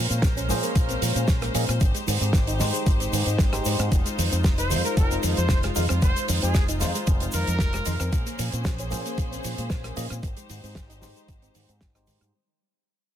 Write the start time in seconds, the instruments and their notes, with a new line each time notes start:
Already playing: string section G#3 C#4 A#4 C5
0.10 fingered electric bass A#2, synth arpeggio sound C4, closed hi-hat, shaker
0.22 fingered electric bass A#1, synth arpeggio sound F3, kick, snare, closed hi-hat, shaker
0.37 synth arpeggio sound C#4, closed hi-hat, shaker
0.49 fingered electric bass A#2, synth arpeggio sound F3, tine electric piano A#3 C#4 G#4 C5, open hi-hat, shaker
0.63 synth arpeggio sound A#3, closed hi-hat, shaker
0.75 fingered electric bass A#1, synth arpeggio sound F3, kick, closed hi-hat, shaker
0.89 synth arpeggio sound C4, closed hi-hat, shaker
1.02 fingered electric bass A#2, synth arpeggio sound F3, open hi-hat, shaker
1.15 fingered electric bass A#2, synth arpeggio sound C#4, closed hi-hat, shaker
1.28 fingered electric bass A#1, synth arpeggio sound F3, kick, snare, closed hi-hat, shaker
1.42 synth arpeggio sound A#3, cross-stick, closed hi-hat, shaker
1.54 fingered electric bass A#2, synth arpeggio sound F3, tine electric piano A#3 C#4 G#4 D#5, open hi-hat, shaker
1.68 fingered electric bass A#2, synth arpeggio sound C4, cross-stick, closed hi-hat, shaker
1.80 fingered electric bass G#1, synth arpeggio sound D#3, string section G#3 D#4 G4, kick, closed hi-hat, shaker
1.82 shaker
1.94 synth arpeggio sound G#3, closed hi-hat, shaker
2.07 fingered electric bass G#2, synth arpeggio sound D#3, open hi-hat, shaker
2.21 fingered electric bass G#2, synth arpeggio sound C4, closed hi-hat, shaker
2.33 fingered electric bass G#1, synth arpeggio sound D#3, kick, snare, closed hi-hat, shaker
2.47 synth arpeggio sound D#4, closed hi-hat, shaker
2.59 fingered electric bass G#2, synth arpeggio sound D#3, tine electric piano G#3 D#4 G4 C5, snare, open hi-hat, shaker
2.73 synth arpeggio sound G#3, closed hi-hat, shaker
2.86 fingered electric bass G#1, synth arpeggio sound D#3, kick, closed hi-hat, shaker
3.00 synth arpeggio sound C4, closed hi-hat, shaker
3.12 fingered electric bass G#2, synth arpeggio sound D#3, open hi-hat, shaker
3.26 fingered electric bass G#2, synth arpeggio sound C4, closed hi-hat, shaker
3.28 shaker
3.38 fingered electric bass G#1, synth arpeggio sound G#3, kick, snare, closed hi-hat, shaker
3.53 tine electric piano G#3 D#4 G4 C5, synth arpeggio sound G4, cross-stick, closed hi-hat, shaker
3.65 fingered electric bass G#2, synth arpeggio sound G#3, open hi-hat, shaker
3.79 fingered electric bass G#2, synth arpeggio sound C4, cross-stick, closed hi-hat, shaker
3.91 fingered electric bass F1, synth arpeggio sound D#3, string section F4, kick, closed hi-hat, shaker
4.05 synth arpeggio sound G#3, closed hi-hat, shaker
4.18 fingered electric bass F2, synth arpeggio sound D#3, open hi-hat, shaker
4.32 fingered electric bass F2, synth arpeggio sound C4, closed hi-hat, shaker
4.44 fingered electric bass F1, synth arpeggio sound D#3, kick, snare, shaker
4.45 closed hi-hat, shaker
4.58 synth arpeggio sound D#4, trumpet section C5, closed hi-hat, shaker
4.59 shaker
4.70 fingered electric bass F2, synth arpeggio sound D#3, tine electric piano G#3 D#4 F4 C5, open hi-hat, shaker
4.84 synth arpeggio sound G#3, trumpet section A#4, closed hi-hat, shaker
4.97 fingered electric bass F1, synth arpeggio sound D#3, trumpet section A#4, kick, closed hi-hat, shaker
5.11 synth arpeggio sound C4, closed hi-hat, shaker
5.23 fingered electric bass F2, synth arpeggio sound D#3, open hi-hat, shaker
5.37 fingered electric bass F2, synth arpeggio sound F3, trumpet section C5, closed hi-hat, shaker
5.38 shaker
5.49 fingered electric bass F1, synth arpeggio sound D#3, kick, snare, closed hi-hat, shaker
5.63 synth arpeggio sound G#3, cross-stick, closed hi-hat, shaker
5.75 fingered electric bass F2, synth arpeggio sound D#3, tine electric piano G#3 D#4 F4 F5, open hi-hat, shaker
5.89 fingered electric bass F2, synth arpeggio sound C4, cross-stick, closed hi-hat, shaker
6.02 fingered electric bass F1, synth arpeggio sound D#3, trumpet section C5, kick, closed hi-hat, shaker
6.16 synth arpeggio sound G#3, closed hi-hat, shaker
6.28 fingered electric bass F2, synth arpeggio sound D#3, open hi-hat, shaker
6.42 fingered electric bass F2, synth arpeggio sound C4, trumpet section G#4, closed hi-hat, shaker
6.55 fingered electric bass F1, synth arpeggio sound D#3, kick, snare, closed hi-hat, shaker
6.68 synth arpeggio sound D#4, closed hi-hat, shaker
6.80 fingered electric bass F2, synth arpeggio sound D#3, tine electric piano G#3 D#4 F4 C5, snare, open hi-hat, shaker
6.94 synth arpeggio sound G#3, closed hi-hat, shaker
7.07 fingered electric bass F1, synth arpeggio sound D#3, kick, closed hi-hat, shaker
7.20 synth arpeggio sound C4, closed hi-hat, shaker
7.32 fingered electric bass F2, synth arpeggio sound D#3, trumpet section A#4, open hi-hat, shaker
7.34 shaker
7.47 fingered electric bass F2, synth arpeggio sound F3, closed hi-hat, shaker
7.59 fingered electric bass F1, synth arpeggio sound D#3, kick, snare, closed hi-hat, shaker
7.73 synth arpeggio sound G#3, cross-stick, closed hi-hat, shaker
7.85 fingered electric bass F2, synth arpeggio sound D#3, tine electric piano G#3 D#4 F4 F5, open hi-hat, shaker
8.00 fingered electric bass F2, synth arpeggio sound C4, cross-stick, closed hi-hat, shaker
8.12 fingered electric bass A#1, synth arpeggio sound F3, string section A#3 C#4 G#4 C5, kick, closed hi-hat, shaker
8.26 synth arpeggio sound A#3, closed hi-hat, shaker
8.39 fingered electric bass A#2, synth arpeggio sound F3, open hi-hat, shaker
8.52 fingered electric bass A#2, synth arpeggio sound C4, closed hi-hat, shaker
8.64 fingered electric bass A#1, synth arpeggio sound F3, kick, snare, closed hi-hat, shaker
8.66 shaker
8.78 synth arpeggio sound C#4, closed hi-hat, shaker
8.90 fingered electric bass A#2, synth arpeggio sound F3, tine electric piano A#3 C#4 G#4 C5, open hi-hat, shaker
8.94 shaker
9.05 synth arpeggio sound A#3, closed hi-hat, shaker
9.18 fingered electric bass A#1, synth arpeggio sound F3, kick, closed hi-hat, shaker
9.19 shaker
9.31 synth arpeggio sound C4, closed hi-hat, shaker
9.44 fingered electric bass A#2, synth arpeggio sound F3, open hi-hat, shaker
9.46 shaker
9.58 fingered electric bass A#2, synth arpeggio sound G#3, closed hi-hat, shaker
9.70 fingered electric bass A#1, synth arpeggio sound F3, kick, snare, closed hi-hat, shaker
9.84 synth arpeggio sound A#3, cross-stick, closed hi-hat, shaker
9.96 fingered electric bass A#2, synth arpeggio sound F3, tine electric piano A#3 C#4 G#4 D#5, open hi-hat, shaker
9.98 shaker
10.10 fingered electric bass A#2, synth arpeggio sound C4, cross-stick, closed hi-hat, shaker
10.23 fingered electric bass G#1, synth arpeggio sound D#3, string section G#3 D#4 G4 C5, kick, closed hi-hat, shaker
10.25 shaker
10.37 synth arpeggio sound G#3, closed hi-hat, shaker
10.49 fingered electric bass G#2, synth arpeggio sound D#3, open hi-hat, shaker
10.63 fingered electric bass G#2, synth arpeggio sound C4, open hi-hat, shaker
10.65 shaker
10.75 fingered electric bass G#1, synth arpeggio sound D#3, kick, snare, closed hi-hat, shaker
10.89 synth arpeggio sound D#4, closed hi-hat, shaker
11.01 fingered electric bass G#2, synth arpeggio sound D#3, tine electric piano G#3 D#4 G4 C5, snare, open hi-hat, shaker
11.16 synth arpeggio sound G#3, closed hi-hat, shaker
11.28 fingered electric bass G#1, synth arpeggio sound D#3, kick, closed hi-hat, shaker
11.42 synth arpeggio sound C4, closed hi-hat, shaker
11.55 fingered electric bass G#2, synth arpeggio sound D#3, open hi-hat, shaker
11.69 fingered electric bass G#2, synth arpeggio sound C4, closed hi-hat, shaker
11.81 fingered electric bass G#1, synth arpeggio sound D#3, kick, snare, closed hi-hat, shaker
11.95 tine electric piano G#3 D#4 G4 C5, synth arpeggio sound C4, cross-stick, closed hi-hat, shaker
12.07 fingered electric bass G#2, synth arpeggio sound D#3, open hi-hat, shaker
12.09 shaker
12.21 fingered electric bass G#2, synth arpeggio sound G3, cross-stick, closed hi-hat, shaker
12.22 shaker